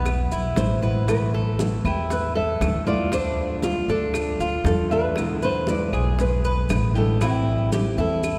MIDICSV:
0, 0, Header, 1, 7, 480
1, 0, Start_track
1, 0, Key_signature, 0, "minor"
1, 0, Tempo, 511073
1, 1012, Time_signature, 4, 2, 24, 8
1, 7877, End_track
2, 0, Start_track
2, 0, Title_t, "Nylon-string guitar"
2, 0, Program_c, 0, 24
2, 537, Note_on_c, 0, 72, 96
2, 1019, Note_off_c, 0, 72, 0
2, 1023, Note_on_c, 0, 71, 82
2, 1464, Note_off_c, 0, 71, 0
2, 1756, Note_on_c, 0, 67, 86
2, 1991, Note_off_c, 0, 67, 0
2, 1994, Note_on_c, 0, 71, 99
2, 2219, Note_off_c, 0, 71, 0
2, 2223, Note_on_c, 0, 76, 89
2, 2697, Note_off_c, 0, 76, 0
2, 2700, Note_on_c, 0, 74, 96
2, 2939, Note_off_c, 0, 74, 0
2, 2943, Note_on_c, 0, 72, 91
2, 3659, Note_on_c, 0, 69, 101
2, 3679, Note_off_c, 0, 72, 0
2, 4371, Note_off_c, 0, 69, 0
2, 4382, Note_on_c, 0, 69, 92
2, 4600, Note_off_c, 0, 69, 0
2, 4627, Note_on_c, 0, 71, 93
2, 5112, Note_off_c, 0, 71, 0
2, 5116, Note_on_c, 0, 72, 88
2, 5348, Note_off_c, 0, 72, 0
2, 5352, Note_on_c, 0, 74, 86
2, 5789, Note_off_c, 0, 74, 0
2, 5828, Note_on_c, 0, 71, 91
2, 6550, Note_off_c, 0, 71, 0
2, 6553, Note_on_c, 0, 69, 81
2, 6780, Note_on_c, 0, 67, 77
2, 6790, Note_off_c, 0, 69, 0
2, 7516, Note_on_c, 0, 69, 75
2, 7519, Note_off_c, 0, 67, 0
2, 7877, Note_off_c, 0, 69, 0
2, 7877, End_track
3, 0, Start_track
3, 0, Title_t, "Cuban tres"
3, 0, Program_c, 1, 25
3, 0, Note_on_c, 1, 59, 84
3, 281, Note_off_c, 1, 59, 0
3, 300, Note_on_c, 1, 64, 65
3, 762, Note_off_c, 1, 64, 0
3, 774, Note_on_c, 1, 71, 69
3, 1239, Note_off_c, 1, 71, 0
3, 1262, Note_on_c, 1, 69, 72
3, 1723, Note_off_c, 1, 69, 0
3, 1736, Note_on_c, 1, 64, 72
3, 2200, Note_off_c, 1, 64, 0
3, 2211, Note_on_c, 1, 69, 71
3, 2677, Note_off_c, 1, 69, 0
3, 2692, Note_on_c, 1, 65, 70
3, 2925, Note_off_c, 1, 65, 0
3, 2937, Note_on_c, 1, 62, 79
3, 3400, Note_off_c, 1, 62, 0
3, 3414, Note_on_c, 1, 65, 70
3, 3646, Note_off_c, 1, 65, 0
3, 3659, Note_on_c, 1, 62, 79
3, 4121, Note_off_c, 1, 62, 0
3, 4136, Note_on_c, 1, 65, 76
3, 4599, Note_off_c, 1, 65, 0
3, 4613, Note_on_c, 1, 76, 71
3, 5078, Note_off_c, 1, 76, 0
3, 5095, Note_on_c, 1, 71, 68
3, 5559, Note_off_c, 1, 71, 0
3, 5571, Note_on_c, 1, 68, 70
3, 6037, Note_off_c, 1, 68, 0
3, 6056, Note_on_c, 1, 71, 72
3, 6520, Note_off_c, 1, 71, 0
3, 6531, Note_on_c, 1, 67, 74
3, 6765, Note_off_c, 1, 67, 0
3, 6773, Note_on_c, 1, 64, 73
3, 7239, Note_off_c, 1, 64, 0
3, 7253, Note_on_c, 1, 67, 64
3, 7487, Note_off_c, 1, 67, 0
3, 7497, Note_on_c, 1, 64, 80
3, 7877, Note_off_c, 1, 64, 0
3, 7877, End_track
4, 0, Start_track
4, 0, Title_t, "Nylon-string guitar"
4, 0, Program_c, 2, 24
4, 531, Note_on_c, 2, 52, 44
4, 537, Note_on_c, 2, 56, 51
4, 543, Note_on_c, 2, 59, 52
4, 549, Note_on_c, 2, 64, 54
4, 762, Note_off_c, 2, 52, 0
4, 762, Note_off_c, 2, 64, 0
4, 765, Note_off_c, 2, 56, 0
4, 768, Note_off_c, 2, 59, 0
4, 773, Note_on_c, 2, 64, 62
4, 780, Note_on_c, 2, 59, 63
4, 788, Note_on_c, 2, 56, 63
4, 791, Note_on_c, 2, 52, 58
4, 990, Note_off_c, 2, 52, 0
4, 1001, Note_on_c, 2, 52, 74
4, 1003, Note_off_c, 2, 64, 0
4, 1006, Note_off_c, 2, 59, 0
4, 1009, Note_off_c, 2, 56, 0
4, 1012, Note_on_c, 2, 57, 71
4, 1018, Note_on_c, 2, 64, 67
4, 1020, Note_on_c, 2, 59, 73
4, 1477, Note_off_c, 2, 52, 0
4, 1483, Note_off_c, 2, 57, 0
4, 1486, Note_off_c, 2, 59, 0
4, 1486, Note_off_c, 2, 64, 0
4, 1493, Note_on_c, 2, 52, 45
4, 1501, Note_on_c, 2, 57, 52
4, 1505, Note_on_c, 2, 59, 52
4, 1510, Note_on_c, 2, 64, 53
4, 1951, Note_off_c, 2, 52, 0
4, 1957, Note_off_c, 2, 57, 0
4, 1960, Note_off_c, 2, 59, 0
4, 1962, Note_off_c, 2, 64, 0
4, 2450, Note_on_c, 2, 52, 52
4, 2457, Note_on_c, 2, 57, 50
4, 2465, Note_on_c, 2, 59, 49
4, 2471, Note_on_c, 2, 64, 59
4, 2679, Note_off_c, 2, 64, 0
4, 2681, Note_off_c, 2, 52, 0
4, 2685, Note_off_c, 2, 57, 0
4, 2689, Note_off_c, 2, 59, 0
4, 2690, Note_on_c, 2, 64, 71
4, 2701, Note_on_c, 2, 59, 62
4, 2711, Note_on_c, 2, 57, 55
4, 2920, Note_off_c, 2, 57, 0
4, 2921, Note_off_c, 2, 64, 0
4, 2924, Note_on_c, 2, 50, 65
4, 2927, Note_off_c, 2, 59, 0
4, 2931, Note_on_c, 2, 57, 68
4, 2936, Note_on_c, 2, 62, 75
4, 2947, Note_on_c, 2, 65, 75
4, 3398, Note_off_c, 2, 50, 0
4, 3402, Note_off_c, 2, 57, 0
4, 3404, Note_off_c, 2, 62, 0
4, 3410, Note_off_c, 2, 65, 0
4, 3412, Note_on_c, 2, 50, 46
4, 3420, Note_on_c, 2, 57, 52
4, 3430, Note_on_c, 2, 62, 52
4, 3434, Note_on_c, 2, 65, 59
4, 3882, Note_off_c, 2, 50, 0
4, 3886, Note_off_c, 2, 57, 0
4, 3887, Note_off_c, 2, 62, 0
4, 3889, Note_off_c, 2, 65, 0
4, 4369, Note_on_c, 2, 50, 50
4, 4378, Note_on_c, 2, 57, 51
4, 4386, Note_on_c, 2, 62, 56
4, 4387, Note_on_c, 2, 65, 50
4, 4593, Note_off_c, 2, 65, 0
4, 4599, Note_off_c, 2, 62, 0
4, 4601, Note_off_c, 2, 50, 0
4, 4605, Note_off_c, 2, 57, 0
4, 4605, Note_on_c, 2, 65, 71
4, 4611, Note_on_c, 2, 62, 65
4, 4621, Note_on_c, 2, 57, 60
4, 4838, Note_off_c, 2, 65, 0
4, 4841, Note_off_c, 2, 62, 0
4, 4847, Note_off_c, 2, 57, 0
4, 4853, Note_on_c, 2, 50, 78
4, 4854, Note_on_c, 2, 47, 68
4, 4860, Note_on_c, 2, 56, 72
4, 4866, Note_on_c, 2, 59, 76
4, 4870, Note_on_c, 2, 64, 76
4, 5321, Note_off_c, 2, 50, 0
4, 5323, Note_off_c, 2, 47, 0
4, 5326, Note_off_c, 2, 56, 0
4, 5329, Note_off_c, 2, 59, 0
4, 5331, Note_off_c, 2, 64, 0
4, 5332, Note_on_c, 2, 50, 53
4, 5336, Note_on_c, 2, 56, 55
4, 5344, Note_on_c, 2, 59, 51
4, 5348, Note_on_c, 2, 64, 58
4, 5800, Note_off_c, 2, 50, 0
4, 5803, Note_off_c, 2, 64, 0
4, 5804, Note_off_c, 2, 56, 0
4, 5808, Note_off_c, 2, 59, 0
4, 6283, Note_on_c, 2, 50, 48
4, 6298, Note_on_c, 2, 56, 50
4, 6302, Note_on_c, 2, 59, 50
4, 6306, Note_on_c, 2, 64, 55
4, 6518, Note_off_c, 2, 64, 0
4, 6519, Note_off_c, 2, 50, 0
4, 6525, Note_off_c, 2, 59, 0
4, 6526, Note_off_c, 2, 56, 0
4, 6529, Note_on_c, 2, 64, 74
4, 6536, Note_on_c, 2, 59, 62
4, 6542, Note_on_c, 2, 56, 66
4, 6544, Note_on_c, 2, 50, 62
4, 6761, Note_off_c, 2, 64, 0
4, 6765, Note_off_c, 2, 50, 0
4, 6765, Note_off_c, 2, 59, 0
4, 6768, Note_off_c, 2, 56, 0
4, 6769, Note_on_c, 2, 52, 61
4, 6781, Note_on_c, 2, 55, 66
4, 6784, Note_on_c, 2, 60, 72
4, 6787, Note_on_c, 2, 64, 78
4, 7242, Note_off_c, 2, 52, 0
4, 7248, Note_off_c, 2, 55, 0
4, 7250, Note_off_c, 2, 60, 0
4, 7251, Note_off_c, 2, 64, 0
4, 7254, Note_on_c, 2, 52, 49
4, 7263, Note_on_c, 2, 55, 52
4, 7269, Note_on_c, 2, 60, 59
4, 7270, Note_on_c, 2, 64, 56
4, 7711, Note_off_c, 2, 52, 0
4, 7717, Note_off_c, 2, 55, 0
4, 7719, Note_off_c, 2, 64, 0
4, 7721, Note_off_c, 2, 60, 0
4, 7877, End_track
5, 0, Start_track
5, 0, Title_t, "Upright bass"
5, 0, Program_c, 3, 32
5, 0, Note_on_c, 3, 35, 83
5, 262, Note_off_c, 3, 35, 0
5, 298, Note_on_c, 3, 35, 72
5, 519, Note_off_c, 3, 35, 0
5, 533, Note_on_c, 3, 33, 84
5, 1671, Note_off_c, 3, 33, 0
5, 1733, Note_on_c, 3, 40, 88
5, 2415, Note_off_c, 3, 40, 0
5, 2450, Note_on_c, 3, 38, 94
5, 3589, Note_off_c, 3, 38, 0
5, 3646, Note_on_c, 3, 38, 78
5, 4095, Note_off_c, 3, 38, 0
5, 4125, Note_on_c, 3, 38, 74
5, 4351, Note_off_c, 3, 38, 0
5, 4360, Note_on_c, 3, 40, 92
5, 5504, Note_off_c, 3, 40, 0
5, 5563, Note_on_c, 3, 35, 86
5, 6251, Note_off_c, 3, 35, 0
5, 6292, Note_on_c, 3, 33, 87
5, 7432, Note_off_c, 3, 33, 0
5, 7491, Note_on_c, 3, 40, 85
5, 7877, Note_off_c, 3, 40, 0
5, 7877, End_track
6, 0, Start_track
6, 0, Title_t, "Muted nylon-string guitar strokes"
6, 55, Note_on_c, 9, 29, 67
6, 148, Note_off_c, 9, 29, 0
6, 1963, Note_on_c, 9, 29, 65
6, 2057, Note_off_c, 9, 29, 0
6, 3893, Note_on_c, 9, 29, 71
6, 3987, Note_off_c, 9, 29, 0
6, 5811, Note_on_c, 9, 29, 66
6, 5905, Note_off_c, 9, 29, 0
6, 7722, Note_on_c, 9, 29, 63
6, 7816, Note_off_c, 9, 29, 0
6, 7877, End_track
7, 0, Start_track
7, 0, Title_t, "Drums"
7, 52, Note_on_c, 9, 60, 61
7, 53, Note_on_c, 9, 70, 69
7, 58, Note_on_c, 9, 75, 65
7, 61, Note_on_c, 9, 63, 33
7, 146, Note_off_c, 9, 60, 0
7, 147, Note_off_c, 9, 70, 0
7, 152, Note_off_c, 9, 75, 0
7, 155, Note_off_c, 9, 63, 0
7, 296, Note_on_c, 9, 70, 56
7, 297, Note_on_c, 9, 60, 34
7, 297, Note_on_c, 9, 63, 29
7, 390, Note_off_c, 9, 70, 0
7, 391, Note_off_c, 9, 60, 0
7, 391, Note_off_c, 9, 63, 0
7, 529, Note_on_c, 9, 60, 66
7, 529, Note_on_c, 9, 61, 83
7, 537, Note_on_c, 9, 70, 71
7, 539, Note_on_c, 9, 63, 80
7, 623, Note_off_c, 9, 60, 0
7, 623, Note_off_c, 9, 61, 0
7, 631, Note_off_c, 9, 70, 0
7, 633, Note_off_c, 9, 63, 0
7, 773, Note_on_c, 9, 60, 33
7, 778, Note_on_c, 9, 70, 26
7, 867, Note_off_c, 9, 60, 0
7, 872, Note_off_c, 9, 70, 0
7, 1015, Note_on_c, 9, 63, 34
7, 1017, Note_on_c, 9, 60, 65
7, 1017, Note_on_c, 9, 70, 73
7, 1022, Note_on_c, 9, 75, 63
7, 1108, Note_off_c, 9, 63, 0
7, 1111, Note_off_c, 9, 60, 0
7, 1111, Note_off_c, 9, 70, 0
7, 1116, Note_off_c, 9, 75, 0
7, 1257, Note_on_c, 9, 63, 34
7, 1351, Note_off_c, 9, 63, 0
7, 1495, Note_on_c, 9, 63, 87
7, 1496, Note_on_c, 9, 60, 60
7, 1503, Note_on_c, 9, 70, 74
7, 1589, Note_off_c, 9, 63, 0
7, 1590, Note_off_c, 9, 60, 0
7, 1596, Note_off_c, 9, 70, 0
7, 1735, Note_on_c, 9, 63, 33
7, 1742, Note_on_c, 9, 75, 65
7, 1743, Note_on_c, 9, 70, 28
7, 1829, Note_off_c, 9, 63, 0
7, 1836, Note_off_c, 9, 75, 0
7, 1837, Note_off_c, 9, 70, 0
7, 1970, Note_on_c, 9, 63, 30
7, 1976, Note_on_c, 9, 60, 65
7, 1979, Note_on_c, 9, 70, 72
7, 2064, Note_off_c, 9, 63, 0
7, 2070, Note_off_c, 9, 60, 0
7, 2073, Note_off_c, 9, 70, 0
7, 2210, Note_on_c, 9, 63, 30
7, 2304, Note_off_c, 9, 63, 0
7, 2450, Note_on_c, 9, 63, 80
7, 2454, Note_on_c, 9, 60, 71
7, 2454, Note_on_c, 9, 61, 81
7, 2458, Note_on_c, 9, 70, 74
7, 2460, Note_on_c, 9, 75, 62
7, 2544, Note_off_c, 9, 63, 0
7, 2548, Note_off_c, 9, 60, 0
7, 2548, Note_off_c, 9, 61, 0
7, 2552, Note_off_c, 9, 70, 0
7, 2554, Note_off_c, 9, 75, 0
7, 2692, Note_on_c, 9, 63, 76
7, 2696, Note_on_c, 9, 70, 27
7, 2786, Note_off_c, 9, 63, 0
7, 2790, Note_off_c, 9, 70, 0
7, 2927, Note_on_c, 9, 63, 34
7, 2929, Note_on_c, 9, 60, 65
7, 2936, Note_on_c, 9, 70, 73
7, 2937, Note_on_c, 9, 75, 58
7, 3021, Note_off_c, 9, 63, 0
7, 3023, Note_off_c, 9, 60, 0
7, 3030, Note_off_c, 9, 70, 0
7, 3031, Note_off_c, 9, 75, 0
7, 3167, Note_on_c, 9, 63, 32
7, 3261, Note_off_c, 9, 63, 0
7, 3404, Note_on_c, 9, 63, 92
7, 3411, Note_on_c, 9, 70, 71
7, 3412, Note_on_c, 9, 60, 60
7, 3498, Note_off_c, 9, 63, 0
7, 3505, Note_off_c, 9, 70, 0
7, 3506, Note_off_c, 9, 60, 0
7, 3646, Note_on_c, 9, 60, 36
7, 3648, Note_on_c, 9, 63, 34
7, 3653, Note_on_c, 9, 70, 29
7, 3740, Note_off_c, 9, 60, 0
7, 3742, Note_off_c, 9, 63, 0
7, 3747, Note_off_c, 9, 70, 0
7, 3884, Note_on_c, 9, 63, 30
7, 3887, Note_on_c, 9, 60, 58
7, 3888, Note_on_c, 9, 75, 65
7, 3896, Note_on_c, 9, 70, 67
7, 3978, Note_off_c, 9, 63, 0
7, 3981, Note_off_c, 9, 60, 0
7, 3982, Note_off_c, 9, 75, 0
7, 3990, Note_off_c, 9, 70, 0
7, 4122, Note_on_c, 9, 63, 29
7, 4131, Note_on_c, 9, 60, 33
7, 4137, Note_on_c, 9, 70, 57
7, 4216, Note_off_c, 9, 63, 0
7, 4225, Note_off_c, 9, 60, 0
7, 4230, Note_off_c, 9, 70, 0
7, 4362, Note_on_c, 9, 63, 78
7, 4365, Note_on_c, 9, 60, 66
7, 4365, Note_on_c, 9, 61, 78
7, 4376, Note_on_c, 9, 70, 67
7, 4455, Note_off_c, 9, 63, 0
7, 4459, Note_off_c, 9, 60, 0
7, 4459, Note_off_c, 9, 61, 0
7, 4470, Note_off_c, 9, 70, 0
7, 4607, Note_on_c, 9, 60, 36
7, 4618, Note_on_c, 9, 70, 28
7, 4701, Note_off_c, 9, 60, 0
7, 4712, Note_off_c, 9, 70, 0
7, 4843, Note_on_c, 9, 60, 69
7, 4844, Note_on_c, 9, 63, 33
7, 4855, Note_on_c, 9, 75, 61
7, 4860, Note_on_c, 9, 70, 68
7, 4937, Note_off_c, 9, 60, 0
7, 4938, Note_off_c, 9, 63, 0
7, 4949, Note_off_c, 9, 75, 0
7, 4954, Note_off_c, 9, 70, 0
7, 5079, Note_on_c, 9, 63, 34
7, 5093, Note_on_c, 9, 70, 59
7, 5173, Note_off_c, 9, 63, 0
7, 5187, Note_off_c, 9, 70, 0
7, 5324, Note_on_c, 9, 63, 84
7, 5329, Note_on_c, 9, 60, 58
7, 5336, Note_on_c, 9, 70, 74
7, 5418, Note_off_c, 9, 63, 0
7, 5423, Note_off_c, 9, 60, 0
7, 5430, Note_off_c, 9, 70, 0
7, 5570, Note_on_c, 9, 63, 34
7, 5570, Note_on_c, 9, 75, 65
7, 5577, Note_on_c, 9, 70, 27
7, 5663, Note_off_c, 9, 63, 0
7, 5664, Note_off_c, 9, 75, 0
7, 5671, Note_off_c, 9, 70, 0
7, 5810, Note_on_c, 9, 60, 62
7, 5811, Note_on_c, 9, 63, 32
7, 5818, Note_on_c, 9, 70, 66
7, 5904, Note_off_c, 9, 60, 0
7, 5905, Note_off_c, 9, 63, 0
7, 5912, Note_off_c, 9, 70, 0
7, 6052, Note_on_c, 9, 70, 59
7, 6054, Note_on_c, 9, 63, 32
7, 6146, Note_off_c, 9, 70, 0
7, 6148, Note_off_c, 9, 63, 0
7, 6287, Note_on_c, 9, 70, 73
7, 6294, Note_on_c, 9, 60, 67
7, 6294, Note_on_c, 9, 61, 77
7, 6294, Note_on_c, 9, 63, 82
7, 6294, Note_on_c, 9, 75, 70
7, 6381, Note_off_c, 9, 70, 0
7, 6388, Note_off_c, 9, 60, 0
7, 6388, Note_off_c, 9, 61, 0
7, 6388, Note_off_c, 9, 63, 0
7, 6388, Note_off_c, 9, 75, 0
7, 6522, Note_on_c, 9, 63, 75
7, 6535, Note_on_c, 9, 70, 27
7, 6616, Note_off_c, 9, 63, 0
7, 6629, Note_off_c, 9, 70, 0
7, 6773, Note_on_c, 9, 70, 71
7, 6775, Note_on_c, 9, 60, 69
7, 6775, Note_on_c, 9, 63, 32
7, 6778, Note_on_c, 9, 75, 60
7, 6867, Note_off_c, 9, 70, 0
7, 6869, Note_off_c, 9, 60, 0
7, 6869, Note_off_c, 9, 63, 0
7, 6872, Note_off_c, 9, 75, 0
7, 7020, Note_on_c, 9, 63, 33
7, 7114, Note_off_c, 9, 63, 0
7, 7253, Note_on_c, 9, 70, 73
7, 7254, Note_on_c, 9, 60, 58
7, 7256, Note_on_c, 9, 63, 96
7, 7347, Note_off_c, 9, 70, 0
7, 7348, Note_off_c, 9, 60, 0
7, 7350, Note_off_c, 9, 63, 0
7, 7493, Note_on_c, 9, 70, 30
7, 7495, Note_on_c, 9, 60, 34
7, 7503, Note_on_c, 9, 63, 31
7, 7587, Note_off_c, 9, 70, 0
7, 7589, Note_off_c, 9, 60, 0
7, 7597, Note_off_c, 9, 63, 0
7, 7733, Note_on_c, 9, 70, 68
7, 7735, Note_on_c, 9, 60, 65
7, 7739, Note_on_c, 9, 75, 65
7, 7743, Note_on_c, 9, 63, 31
7, 7826, Note_off_c, 9, 70, 0
7, 7829, Note_off_c, 9, 60, 0
7, 7833, Note_off_c, 9, 75, 0
7, 7837, Note_off_c, 9, 63, 0
7, 7877, End_track
0, 0, End_of_file